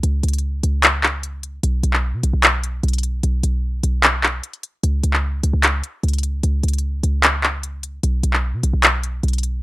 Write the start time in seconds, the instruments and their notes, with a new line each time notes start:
0.03 808-style bass C#2, closed hi-hat
0.23 808-style bass C#2, closed hi-hat
0.28 closed hi-hat
0.33 closed hi-hat
0.38 closed hi-hat
0.63 808-style bass C#2, closed hi-hat
0.83 clap, closed hi-hat
1.03 clap
1.23 closed hi-hat
1.43 closed hi-hat
1.63 808-style bass B1, closed hi-hat
1.83 808-style bass B1, closed hi-hat
1.93 clap
2.13 808-style bass B2
2.23 808-style bass B1, closed hi-hat
2.33 808-style bass B1
2.43 clap, closed hi-hat
2.63 closed hi-hat
2.83 808-style bass B1, closed hi-hat
2.88 closed hi-hat
2.93 closed hi-hat
2.98 closed hi-hat
3.03 closed hi-hat
3.23 808-style bass B1, closed hi-hat
3.43 808-style bass B1, closed hi-hat
3.83 808-style bass B1, closed hi-hat
4.03 clap, closed hi-hat
4.23 clap
4.43 closed hi-hat
4.53 closed hi-hat
4.63 closed hi-hat
4.83 808-style bass C#2, closed hi-hat
5.03 808-style bass C#2, closed hi-hat
5.13 clap
5.43 808-style bass C#2, closed hi-hat
5.53 808-style bass C#2
5.63 clap, closed hi-hat
5.84 closed hi-hat
6.03 808-style bass C#2, closed hi-hat
6.08 closed hi-hat
6.13 closed hi-hat
6.18 closed hi-hat
6.23 closed hi-hat
6.43 808-style bass C#2, closed hi-hat
6.63 808-style bass C#2, closed hi-hat
6.68 closed hi-hat
6.73 closed hi-hat
6.78 closed hi-hat
7.03 808-style bass C#2, closed hi-hat
7.23 clap, closed hi-hat
7.43 clap
7.63 closed hi-hat
7.83 closed hi-hat
8.03 808-style bass B1, closed hi-hat
8.23 808-style bass B1, closed hi-hat
8.33 clap
8.53 808-style bass B2
8.63 808-style bass B1, closed hi-hat
8.73 808-style bass B1
8.83 clap, closed hi-hat
9.03 closed hi-hat
9.23 808-style bass B1, closed hi-hat
9.28 closed hi-hat
9.33 closed hi-hat
9.38 closed hi-hat
9.43 closed hi-hat